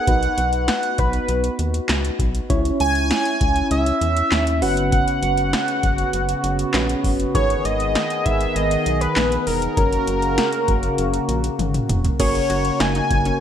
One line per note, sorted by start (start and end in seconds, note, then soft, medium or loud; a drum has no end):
0.00 2.46 B3 medium
0.00 0.68 F#5 loud
0.07 0.29 B1 loud
0.07 2.46 D#4 medium
0.07 2.48 F#4 medium
0.07 2.46 F#4 medium
0.07 2.46 B4 medium
0.07 kick loud
0.07 closed hi-hat medium
0.23 closed hi-hat medium
0.38 0.70 B1 loud
0.38 closed hi-hat medium
0.53 closed hi-hat soft
0.68 1.00 F#5 loud
0.68 snare loud
0.68 closed hi-hat medium
0.83 closed hi-hat soft
0.98 1.20 B1 loud
0.98 1.59 B4 medium
0.98 kick loud
0.98 closed hi-hat medium
1.13 closed hi-hat soft
1.28 1.50 B1 loud
1.28 closed hi-hat medium
1.44 closed hi-hat medium
1.59 1.80 D#2 medium
1.59 closed hi-hat medium
1.74 closed hi-hat medium
1.89 2.11 C#2 medium
1.89 snare loud
1.89 clap loud
1.89 closed hi-hat medium
2.05 closed hi-hat medium
2.19 2.41 B1 medium
2.19 kick loud
2.19 closed hi-hat medium
2.35 closed hi-hat medium
2.50 2.71 C#2 loud
2.50 4.58 C#4 medium
2.50 4.60 C#4 medium
2.50 4.58 E4 medium
2.50 4.60 E4 medium
2.50 4.58 C#5 medium
2.50 kick loud
2.50 closed hi-hat medium
2.65 closed hi-hat medium
2.80 3.12 C#2 loud
2.80 3.67 G#5 loud
2.80 closed hi-hat medium
2.95 closed hi-hat soft
3.11 snare loud
3.11 closed hi-hat medium
3.25 closed hi-hat soft
3.41 3.62 C#2 medium
3.41 kick loud
3.41 closed hi-hat medium
3.56 closed hi-hat soft
3.71 3.92 C#2 loud
3.71 4.63 E5 loud
3.71 closed hi-hat medium
3.86 closed hi-hat medium
4.01 4.23 E2 medium
4.01 closed hi-hat medium
4.17 closed hi-hat medium
4.32 4.64 D#2 medium
4.32 snare loud
4.32 clap medium
4.32 closed hi-hat medium
4.47 closed hi-hat medium
4.62 5.04 F#1 loud
4.62 7.32 C#3 medium
4.62 9.73 B3 medium
4.62 6.70 C#4 medium
4.62 6.70 F#4 medium
4.62 7.32 F#4 medium
4.62 6.70 B4 medium
4.62 4.92 F#5 medium
4.62 open hi-hat medium
4.77 closed hi-hat medium
4.92 7.00 F#5 loud
4.92 kick loud
4.92 closed hi-hat medium
5.08 closed hi-hat medium
5.23 5.54 F#1 loud
5.23 closed hi-hat medium
5.37 closed hi-hat soft
5.53 snare loud
5.53 closed hi-hat medium
5.68 closed hi-hat soft
5.83 6.05 F#1 medium
5.83 kick loud
5.83 closed hi-hat medium
5.98 closed hi-hat medium
6.13 6.35 F#1 loud
6.13 closed hi-hat medium
6.29 closed hi-hat medium
6.44 6.65 F#1 medium
6.44 closed hi-hat medium
6.59 closed hi-hat medium
6.74 6.95 A#1 loud
6.74 7.35 C#4 medium
6.74 7.35 F#4 medium
6.74 7.34 B4 medium
6.74 snare loud
6.74 clap loud
6.74 closed hi-hat medium
6.89 closed hi-hat medium
7.04 7.25 F#1 loud
7.04 kick medium
7.04 open hi-hat medium
7.20 closed hi-hat medium
7.35 7.56 G#1 loud
7.35 9.75 D#3 medium
7.35 9.13 D#3 medium
7.35 9.75 G#4 medium
7.35 9.13 G#4 medium
7.35 9.13 B4 medium
7.35 7.67 C#5 loud
7.35 kick loud
7.35 closed hi-hat medium
7.50 closed hi-hat medium
7.65 7.97 G#1 loud
7.65 8.27 D#5 loud
7.65 closed hi-hat medium
7.80 closed hi-hat soft
7.95 snare loud
7.95 closed hi-hat medium
8.10 closed hi-hat soft
8.25 8.47 G#1 loud
8.25 8.57 E5 loud
8.25 kick loud
8.25 closed hi-hat medium
8.41 closed hi-hat medium
8.56 8.77 G#1 loud
8.56 9.02 D#5 loud
8.56 closed hi-hat medium
8.71 closed hi-hat medium
8.86 9.07 B1 medium
8.86 closed hi-hat medium
9.01 9.46 B4 loud
9.01 closed hi-hat medium
9.16 9.38 A#1 medium
9.16 9.77 B3 medium
9.16 9.77 D#4 medium
9.16 9.77 G#4 soft
9.16 snare loud
9.16 clap loud
9.16 closed hi-hat medium
9.32 closed hi-hat medium
9.47 9.68 E1 medium
9.47 11.55 A#4 loud
9.47 open hi-hat medium
9.62 closed hi-hat medium
9.77 9.98 F#1 loud
9.77 12.17 C#3 medium
9.77 12.17 A#3 medium
9.77 12.16 C#4 medium
9.77 12.17 F#4 medium
9.77 12.16 F#4 medium
9.77 12.16 A#4 medium
9.77 kick loud
9.77 closed hi-hat medium
9.93 closed hi-hat medium
10.07 10.39 F#1 loud
10.07 closed hi-hat medium
10.22 closed hi-hat soft
10.38 snare loud
10.38 closed hi-hat medium
10.53 closed hi-hat soft
10.68 10.89 F#1 loud
10.68 kick loud
10.68 closed hi-hat medium
10.83 closed hi-hat medium
10.98 11.20 F#1 loud
10.98 closed hi-hat medium
11.14 closed hi-hat medium
11.29 11.50 A#1 loud
11.29 closed hi-hat medium
11.44 closed hi-hat medium
11.59 11.80 G#1 medium
11.59 closed hi-hat medium
11.59 high tom medium
11.74 closed hi-hat medium
11.74 mid tom medium
11.89 12.11 E1 medium
11.89 closed hi-hat medium
11.89 mid tom medium
12.05 closed hi-hat medium
12.05 floor tom medium
12.20 12.41 F#1 loud
12.20 13.40 C#3 medium
12.20 13.40 A#3 medium
12.20 13.40 C#4 medium
12.20 13.40 F#4 medium
12.20 12.41 G#4 loud
12.20 13.40 A#4 medium
12.20 12.81 C#5 loud
12.20 kick loud
12.20 closed hi-hat medium
12.20 crash loud
12.35 closed hi-hat medium
12.50 12.71 F#1 loud
12.50 12.71 F#4 medium
12.50 closed hi-hat medium
12.65 closed hi-hat soft
12.80 13.01 F#1 loud
12.80 12.91 D#4 medium
12.80 13.40 G#5 loud
12.80 snare loud
12.80 closed hi-hat medium
12.95 13.17 D#4 medium
12.95 closed hi-hat soft
13.11 13.32 F#1 loud
13.11 kick loud
13.11 closed hi-hat medium
13.25 13.40 C#4 medium
13.25 closed hi-hat soft